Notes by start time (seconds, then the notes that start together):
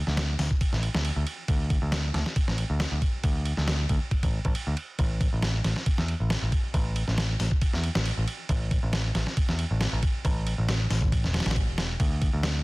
0.07 D2, snare
0.17 snare, ride
0.39 D2, snare, open hi-hat
0.51 kick
0.61 kick, ride
0.72 A1, snare
0.83 ride
0.94 D2, snare
1.05 ride
1.16 D2
1.27 ride
1.48 D2, kick, ride
1.70 kick, ride
1.82 D2
1.92 snare, ride
2.14 D2, snare, ride
2.26 snare
2.36 muted picked electric bass stroke, kick, ride
2.48 A1, snare
2.58 ride
2.70 D2
2.80 snare, ride
2.92 D2
3.02 kick, ride
3.24 D2, kick, ride
3.46 ride
3.57 D2, snare
3.68 snare, ride
3.89 D2, kick, ride
4.11 kick, ride
4.23 A1, kick, ride
4.45 A1, kick, ride
4.55 ride
4.67 D2
4.77 ride
4.99 A1, kick, ride
5.21 kick, ride
5.33 A1
5.43 snare, ride
5.64 A1, snare, ride
5.76 snare
5.86 muted picked electric bass stroke, kick, ride
5.98 E2, snare
6.08 ride
6.20 A1
6.30 snare, ride
6.42 A1
6.52 kick, ride
6.74 A1, kick, ride
6.96 ride
7.08 A1, snare
7.18 snare, ride
7.40 A1, snare, open hi-hat
7.51 kick
7.61 kick, ride
7.73 E2, snare
7.83 ride
7.95 A1, snare
8.05 ride
8.17 A1
8.28 ride
8.49 A1, kick, ride
8.71 kick, ride
8.83 A1
8.93 snare, ride
9.15 A1, snare, ride
9.27 snare
9.37 muted picked electric bass stroke, kick, ride
9.49 E2, snare
9.59 ride
9.71 A1
9.81 snare, ride
9.93 A1
10.03 kick, ride
10.25 A1, kick, ride
10.47 ride
10.58 A1
10.69 snare, ride
10.90 A1, snare, open hi-hat
11.02 kick
11.12 kick, ride
11.24 E1, snare
11.34 snare, ride
11.40 snare, ride
11.46 A1, snare, ride
11.51 snare, ride
11.56 kick, ride
11.68 E1
11.78 snare, ride
12.00 D2, kick, ride
12.22 kick, ride
12.33 D2
12.43 snare, ride